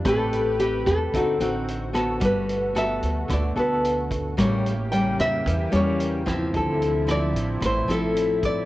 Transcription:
<<
  \new Staff \with { instrumentName = "Nylon-string guitar" } { \time 4/4 \key a \phrygian \tempo 4 = 111 a'4 g'8 a'4. r4 | b'4 e''4 d''8 b'4 r8 | cis''4 g''8 e''4 cis''4 r8 | a'4 d''4 c''8 a'4 d''8 | }
  \new Staff \with { instrumentName = "Nylon-string guitar" } { \time 4/4 \key a \phrygian << { <c' g' b'>4 <c' g' b'>4 <c' ees' fis'>8 <c' ees' fis'>4 <b fis' a'>8~ | <b fis' a'>4 <b fis' a'>4. <b fis' a'>4. | <g bes cis'>8 r8 <g bes cis'>4. <g bes cis'>4 <f c' e'>8~ | <f c' e'>4 <f c' e'>4 r8 <f c' e'>4. | } \\ { a2 d2 | g2 d2 | a,2 e2 | d2 a,2 | } >> }
  \new Staff \with { instrumentName = "Analog synth pad" } { \time 4/4 \key a \phrygian << { g'2 fis'2~ | fis'1 | g'1 | e'1 | } \\ { <c b'>2 c'2 | <b, a>1 | <cis bes>1 | <c f>1 | } >> }
  \new Staff \with { instrumentName = "Upright bass" } { \clef bass \time 4/4 \key a \phrygian a,,4. e,8 d,8 a,,4. | g,,4. d,8 d,8 d,4. | a,,4. e,8 e,8 e,4. | d,4. a,,8 a,,8 a,,4. | }
  \new DrumStaff \with { instrumentName = "Drums" } \drummode { \time 4/4 <hh bd ss>8 hh8 hh8 <hh bd ss>8 <hh bd>8 hh8 hh8 <hh ss>8 | <hh bd>8 hh8 <hh ss>8 hh8 <hh bd ss>8 hh8 hh8 <hh bd>8 | <hh bd ss>8 hh8 hh8 <hh ss>8 <hh bd>8 hh8 hh8 <hh bd ss>8 | <hh bd>8 hh8 <hh ss>8 hh8 <hh bd ss>8 hh8 hh8 <hh bd>8 | }
>>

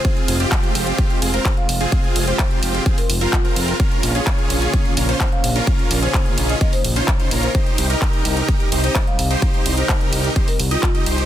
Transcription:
<<
  \new Staff \with { instrumentName = "Marimba" } { \time 4/4 \key f \minor \tempo 4 = 128 c''4~ c''16 r4. c''8 f''16 r8 | r8. c''8 r4 bes'8 f'16 r4 | r2 r8. c''8 f''16 f''16 r16 | r8. c''8 r8 ees''16 ees''16 c''8 r4 c''16 |
r2 r8. c''8 f''16 f''16 r16 | r8. c''8 r4 bes'8 f'16 f'16 r8. | }
  \new Staff \with { instrumentName = "Supersaw synth" } { \time 4/4 \key f \minor <c' f'>8. <c' f' g'>4.~ <c' f' g'>16 <c' f' aes'>16 <c' f' bes'>8 r8 <c' f' aes'>16~ | <c' f' aes'>8. <c' f' g'>4~ <c' f' g'>16 <c' f' aes'>16 r8 <c' f' bes'>16 r16 <c' f' bes'>8. | <des' bes'>8. <des' f' aes'>4.~ <des' f' aes'>16 <des' f' bes'>16 <des' f' c''>8 r8 <des' f' bes'>16~ | <des' f' bes'>8. <des' f' aes'>4~ <des' f' aes'>16 bes'16 r8 <des' f' c''>16 r16 <des' f' c''>16 <des' f' bes'>8 |
g'8. <ees' g' bes'>4.~ <ees' g' bes'>16 <ees' g' c''>16 <ees' g' ees''>8 r8 <ees' g' c''>16~ | <ees' g' c''>8. <ees' g' bes'>4~ <ees' g' bes'>16 <ees' g' c''>16 r8 <ees' g' ees''>16 r16 <ees' g' ees''>16 <ees' g' c''>8 | }
  \new Staff \with { instrumentName = "Analog synth pad" } { \clef bass \time 4/4 \key f \minor << { f'1~ | f'1~ | f'1 | ees'1~ |
ees'1~ | ees'1 | } \\ { <c aes>1~ | <c aes>1 | <des bes>1~ | <des bes>1 |
<c g>1~ | <c g>1 | } >> }
  \new Staff \with { instrumentName = "Analog synth bass" } { \clef bass \time 4/4 \key f \minor r8 f,,8 r8 f,,8 r8 f,,8 r8 f,,8 | r8 f,,8 r8 f,,8 r8 f,,8 r8 f,,8 | r8 bes,,8 r8 bes,,8 r8 bes,,8 r8 bes,,8 | r8 bes,,8 r8 bes,,8 r8 bes,,8 r8 bes,,8 |
r8 c,8 r8 c,8 r8 c,8 r8 c,8 | r8 c,8 r8 c,8 r8 c,8 r8 c,8 | }
  \new DrumStaff \with { instrumentName = "Drums" } \drummode { \time 4/4 <hh bd>16 hh16 <hho cymr>16 hh16 <hc hh bd>16 hh16 <hho cymr>16 hh16 <hh bd>16 hh16 <hho cymr>16 hh16 <hc hh bd>16 hh16 <hho cymr>16 hh16 | <hh bd>16 hh16 <hho cymr>16 hh16 <hc hh bd>16 hh16 <hho cymr>16 hh16 <hh bd>16 hho16 <hho cymr>16 hh16 <hc hh bd>16 hh16 <hho cymr>16 hh16 | <hh bd>16 hh16 <hho cymr>16 hh16 <hc hh bd>16 hh16 <hho cymr>16 hh16 <hh bd>16 hh16 <hho cymr>16 hh16 <hc hh bd>16 hh16 <hho cymr>16 hh16 | <hh bd>16 hh16 <hho cymr>16 hh16 <hc hh bd>16 hh16 <hho cymr>16 hh16 <hh bd>16 hho16 <hho cymr>16 hh16 <hc hh bd>16 hh16 <hho cymr>16 hh16 |
<hh bd>16 hh16 <hho cymr>16 hh16 <hc hh bd>16 hh16 <hho cymr>16 hh16 <hh bd>16 hh16 <hho cymr>16 hh16 <hc hh bd>16 hh16 <hho cymr>16 hh16 | <hh bd>16 hh16 <hho cymr>16 hh16 <hc hh bd>16 hh16 <hho cymr>16 hh16 <hh bd>16 hho16 <hho cymr>16 hh16 <hc hh bd>16 hh16 <hho cymr>16 hh16 | }
>>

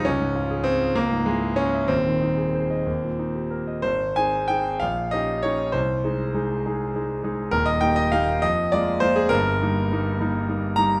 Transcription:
\new Staff \with { instrumentName = "Grand piano" } { \time 6/8 \key aes \major \tempo 4. = 67 << { des'4 c'8 bes8 aes8 des'8 | c'2~ c'8 r8 | c''8 aes''8 g''8 f''8 ees''8 des''8 | c''2~ c''8 r8 |
bes'16 ees''16 g''16 ees''16 f''8 ees''8 d''8 c''16 aes'16 | bes'2~ bes'8 bes''8 | } \\ { des,16 aes,16 f'16 aes'16 des''16 f''16 des,16 aes,16 fes'16 aes'16 des''16 fes''16 | <ees,, ees,>16 ees16 ees'16 aes'16 c''16 ees''16 ees,16 bes,16 ees'16 g'16 bes'16 ees''16 | aes,,8 <c' ees' aes'>8 <c' ees' aes'>8 bes,,8 <des' ees' g'>8 <des' ees' g'>8 | c,8 <aes ees' aes'>8 <aes ees' aes'>8 <aes ees' aes'>8 <aes ees' aes'>8 <aes ees' aes'>8 |
<ees,, ees,>8 <bes ees' g'>8 <bes ees' g'>8 f,8 <aes bes f'>8 <aes bes f'>8 | <g,, g,>8 <g bes ees'>8 <g bes ees'>8 <g bes ees'>8 <g bes ees'>8 <g bes ees'>8 | } >> }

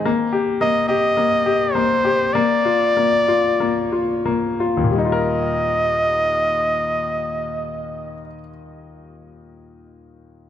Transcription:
<<
  \new Staff \with { instrumentName = "Flugelhorn" } { \time 4/4 \key ees \major \tempo 4 = 43 r8 ees''16 ees''8. c''8 d''4. r8 | ees''1 | }
  \new Staff \with { instrumentName = "Grand piano" } { \time 4/4 \key ees \major bes16 g'16 bes16 g'16 bes16 g'16 bes16 g'16 bes16 f'16 bes16 f'16 bes16 f'16 bes16 f'16 | <ees, bes, g ees' f' bes'>1 | }
>>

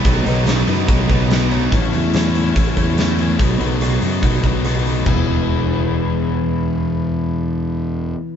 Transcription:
<<
  \new Staff \with { instrumentName = "Distorted electric guitar" } { \clef bass \time 4/4 \key e \major \tempo 4 = 144 <b, dis fis b dis'>8 <b, dis fis b dis'>8 <b, dis fis b dis'>8 <b, dis fis b dis'>8 <b, dis fis b dis'>8 <b, dis fis b dis'>8 <b, dis fis b dis'>8 <b, dis fis b dis'>8 | r1 | r1 | r1 |
r1 | }
  \new Staff \with { instrumentName = "Overdriven electric guitar" } { \clef bass \time 4/4 \key e \major <b, dis fis b dis'>8 <b, dis fis b dis'>8 <b, dis fis b dis'>8 <b, dis fis b dis'>8 <b, dis fis b dis'>8 <b, dis fis b dis'>8 <b, dis fis b dis'>8 <b, dis fis b dis'>8 | <a, e a cis' e'>8 <a, e a cis' e'>8 <a, e a cis' e'>8 <a, e a cis' e'>8 <a, e a cis' e'>8 <a, e a cis' e'>8 <a, e a cis' e'>8 <a, e a cis' e'>8 | <b, dis fis b dis'>8 <b, dis fis b dis'>8 <b, dis fis b dis'>8 <b, dis fis b dis'>8 <b, dis fis b dis'>8 <b, dis fis b dis'>8 <b, dis fis b dis'>8 <b, dis fis b dis'>8 | <e b e' gis'>1~ |
<e b e' gis'>1 | }
  \new Staff \with { instrumentName = "Fingered electric bass" } { \clef bass \time 4/4 \key e \major b,,8 b,,4 fis,8 b,,8 b,,4. | a,,8 e,4. a,,8 e,4. | b,,8 b,,4 fis,8 b,,8 b,,4. | e,,1~ |
e,,1 | }
  \new DrumStaff \with { instrumentName = "Drums" } \drummode { \time 4/4 <hho bd>8 hho8 <hho sn>8 <hho sn>8 <hho bd>8 <hho bd>8 <hho sn>8 hho8 | <hho bd>8 hho8 <hho sn>8 hho8 <hho bd>8 <hho bd>8 <hho sn>8 hho8 | <hho bd>8 hho8 <hho ss>8 hho8 <hho bd>8 <hho bd>8 <hho ss>8 hho8 | <cymc bd tomfh>4 r4 r4 r4 |
r4 r4 r4 r4 | }
>>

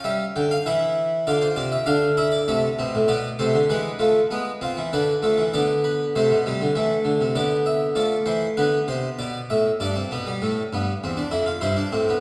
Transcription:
<<
  \new Staff \with { instrumentName = "Harpsichord" } { \time 4/4 \key d \minor \tempo 4 = 98 e''8 g''16 f''16 e''4 d''16 c''16 d''16 e''16 f''8 e''16 d''16 | e''4 d''8 c''8 b'2 | b'4 d''8 b'8 c''2 | d''8 e''8 d''8 c''8 b'8 c''8 d''8 e''8 |
d''2. c''4 | }
  \new Staff \with { instrumentName = "Harpsichord" } { \clef bass \time 4/4 \key d \minor << { cis'4 e'4 f'4 d'8 e'8 | a8 c'8 b8 a8 gis8 a8 b8 c'8 | d'8 a8 b4 a8 g8 a4 | b4 a4 b2 |
d'16 c'16 b16 g16 a8 b8 c'16 d'16 e'16 f'16 e'16 d'16 c'16 b16 | } \\ { g8 d8 e4 d8 c8 d4 | c8 b,16 a,16 b,8 c16 d16 e8 f8 gis8 f16 e16 | d8 f16 e16 d4 c16 b,16 c16 d16 e8 d16 c16 | d4 f8 e8 d8 c8 b,8 a,8 |
g,8 b,8 a,8 g,8 e,8 f,8 g,8 a,8 | } >> }
>>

